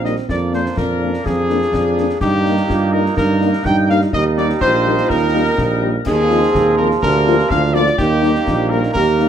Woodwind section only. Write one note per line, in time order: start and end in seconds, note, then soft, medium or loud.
0.05 0.16 D#5 medium
0.29 0.40 D5 medium
0.54 0.65 C5 medium
0.78 1.22 A#4 medium
1.25 2.21 G#4 medium
2.21 2.89 G4 medium
2.92 3.03 A#4 medium
3.16 3.62 A#4 medium
3.65 3.89 G5 loud
3.91 4.01 F5 medium
4.14 4.24 D#5 medium
4.39 4.49 D5 medium
4.61 5.06 C5 loud
5.10 6.02 A#4 loud
6.07 6.75 G#4 medium
6.80 6.91 A#4 medium
7.06 7.49 A#4 loud
7.51 7.62 F5 loud
7.76 7.98 D5 loud
8.01 8.68 G4 medium
8.71 8.82 A#4 medium
8.96 9.29 A#4 medium